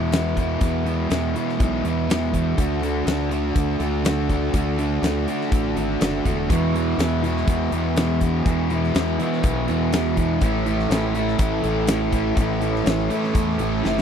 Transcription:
Already playing: E2 B2 E3 G#3 B3 E4
0.11 E2 B2 E3 G#3 B3 E4, snare, closed hi-hat
0.36 E2 B2 E3 G#3 B3 E4, kick, closed hi-hat
0.61 E2 B2 E3 G#3 B3 E4, kick, closed hi-hat
0.86 E2 B2 E3 G#3 B3 E4, closed hi-hat
1.09 E2 B2 E3 G#3 B3 E4, snare, closed hi-hat
1.35 E2 B2 E3 G#3 B3 E4, closed hi-hat
1.49 snare
1.60 B1 E2 B2 E3 G#3 B3 E4, kick, closed hi-hat
1.84 E2 B2 E3 G#3 B3 E4, closed hi-hat
2.09 E2 B2 E3 G#3 B3 E4, snare, closed hi-hat
2.33 E2 B2 E3 G#3 B3 E4, kick, closed hi-hat
2.58 D2 D3 A3 D4 F#4, kick, closed hi-hat
2.82 D3 A3 D4 F#4, closed hi-hat
3.06 D2 D3 A3 D4 F#4, snare, closed hi-hat
3.31 D3 A3 D4 F#4, closed hi-hat
3.55 D2 D3 A3 D4 F#4, kick, closed hi-hat
3.80 D2 D3 A3 D4 F#4, closed hi-hat
4.05 D3 A3 D4 F#4, snare, closed hi-hat
4.29 D3 A3 D4 F#4, kick, closed hi-hat
4.54 D2 D3 A3 D4 F#4, kick, closed hi-hat
4.79 D3 A3 D4 F#4, closed hi-hat
5.02 D2 D3 A3 D4 F#4, snare, closed hi-hat
5.27 D3 A3 D4 F#4, closed hi-hat
5.41 snare
5.51 A1 D3 A3 D4 F#4, kick, closed hi-hat
5.76 G#1 D3 A3 D4 F#4, closed hi-hat
6.01 F#1 D3 A3 D4 F#4, snare, closed hi-hat
6.25 E1 D3 A3 D4 F#4, kick, closed hi-hat
6.49 E2 B2 E3 G#3 B3 E4, kick, closed hi-hat
6.74 E2 B2 E3 G#3 B3 E4, closed hi-hat
6.98 E2 B2 E3 G#3 B3 E4, snare, closed hi-hat
7.23 E2 B2 E3 G#3 B3 E4, closed hi-hat
7.37 snare
7.47 E2 B2 E3 G#3 B3 E4, kick, closed hi-hat
7.72 E2 B2 E3 G#3 B3 E4, closed hi-hat
7.96 E2 B2 E3 G#3 B3 E4, snare, closed hi-hat
8.21 E2 B2 E3 G#3 B3 E4, kick, closed hi-hat
8.46 E2 B2 E3 G#3 B3 E4, kick, closed hi-hat
8.70 E2 B2 E3 G#3 B3 E4, closed hi-hat
8.84 snare
8.94 E2 B2 E3 G#3 B3 E4, snare, closed hi-hat
9.20 E2 B2 E3 G#3 B3 E4, closed hi-hat
9.33 snare
9.43 B1 E2 B2 E3 G#3 B3 E4, kick, closed hi-hat
9.68 E2 B2 E3 G#3 B3 E4, closed hi-hat
9.92 E2 B2 E3 G#3 B3 E4, snare, closed hi-hat
10.15 E2 B2 E3 G#3 B3 E4, kick, closed hi-hat
10.41 A1 A2 E3 A3 C#4 E4, kick, closed hi-hat
10.46 A3
10.66 A2 E3 A3 C#4 E4, closed hi-hat
10.79 snare
10.89 A1 A2 E3 A3 C#4 E4, snare, closed hi-hat
11.13 A2 E3 A3 C#4 E4, closed hi-hat
11.19 A2
11.28 snare
11.38 A1 A2 E3 A3 C#4 E4, kick, closed hi-hat
11.61 A1 A2 E3 A3 C#4 E4, closed hi-hat
11.87 A2 E3 A3 C#4 E4, snare, closed hi-hat
12.11 A2 E3 A3 C#4 E4, kick, closed hi-hat
12.36 A1 A2 E3 A3 C#4 E4, kick, closed hi-hat
12.60 A2 E3 A3 C#4 E4, closed hi-hat
12.76 snare
12.86 A1 A2 E3 A3 C#4 E4, snare, closed hi-hat
13.09 A2 E3 A3 C#4 E4, closed hi-hat
13.15 A2
13.24 snare
13.34 E2 A2 E3 A3 C#4 E4, kick, closed hi-hat
13.59 A1 A2 E3 A3 C#4 E4, closed hi-hat
13.84 F#1 A2 E3 A3 C#4 E4, snare
13.98 snare

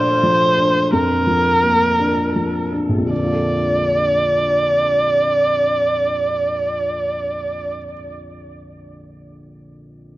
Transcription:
Already playing: A#2 F3 A3 D4 C5
0.23 F3
0.58 D4
0.93 F2 A#4
1.27 F3
1.63 A#3
1.99 D4
2.35 F3
2.72 D4
2.89 A#1
2.98 F2
3.06 D3
3.13 A#3 D5
3.24 F4
3.33 A4

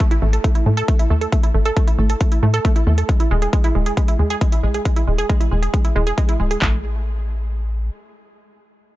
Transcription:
0.00 A3, kick, closed hi-hat
0.11 E4, closed hi-hat
0.22 A1 A3
0.33 A4, closed hi-hat
0.44 A3, kick, closed hi-hat
0.55 E4, closed hi-hat
0.66 A2 A3
0.77 A4, closed hi-hat
0.88 A3, kick, closed hi-hat
0.99 E4, closed hi-hat
1.10 E2 A3
1.21 A4, closed hi-hat
1.32 A3, kick, closed hi-hat
1.43 E4, closed hi-hat
1.54 A1 A3
1.65 A4, closed hi-hat
1.76 A3, kick, closed hi-hat
1.88 E4, closed hi-hat
1.99 A1 A3
2.10 A4, closed hi-hat
2.21 A3, kick, closed hi-hat
2.32 E4, closed hi-hat
2.43 A2 A3
2.54 A4, closed hi-hat
2.65 A3, kick, closed hi-hat
2.76 E4, closed hi-hat
2.87 E2 A3
2.98 A4, closed hi-hat
3.09 G#3, kick, closed hi-hat
3.20 E4, closed hi-hat
3.31 E1 G#3
3.42 G#4, closed hi-hat
3.53 G#3, kick, closed hi-hat
3.64 E4, closed hi-hat
3.75 E1 G#3
3.86 G#4, closed hi-hat
3.97 G#3, kick, closed hi-hat
4.08 E4, closed hi-hat
4.19 E2 G#3
4.30 G#4, closed hi-hat
4.41 G#3, kick, closed hi-hat
4.52 E4, closed hi-hat
4.63 B1 G#3
4.74 G#4, closed hi-hat
4.85 G#3, kick, closed hi-hat
4.96 E4, closed hi-hat
5.07 E1 G#3
5.18 G#4, closed hi-hat
5.29 G#3, kick, closed hi-hat
5.41 E4, closed hi-hat
5.51 E1 G#3
5.63 G#4, closed hi-hat
5.74 G#3, kick, closed hi-hat
5.85 E4, closed hi-hat
5.96 E1 G#3
6.07 G#4, closed hi-hat
6.18 G#3, kick, closed hi-hat
6.29 E4, closed hi-hat
6.40 D1 G#3
6.51 G#4, closed hi-hat
6.62 A1 A3, kick, clap

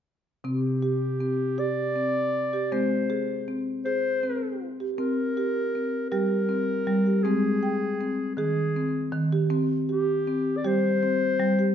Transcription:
0.44 C3 C4 G4
0.82 G4
1.20 C4
1.58 G4 D5
1.96 C4
2.53 G4
2.72 G#3 C4 C5
3.10 G#4
3.48 C4
3.85 G#4 C5
4.23 C4
4.80 G4
4.97 C4 A#4
5.37 G4
5.75 C4
6.10 G3 G4 A#4
6.49 C4
6.87 G3
7.06 G4
7.23 G#3 C4 G#4
7.63 G5
8.01 C4
8.36 D#3 G#4
8.76 C4
9.12 D#3
9.32 G4
9.50 C4
9.89 G4
10.27 C4
10.57 D5
10.65 G3 G4 C5
11.03 C4
11.40 G3
11.59 G4

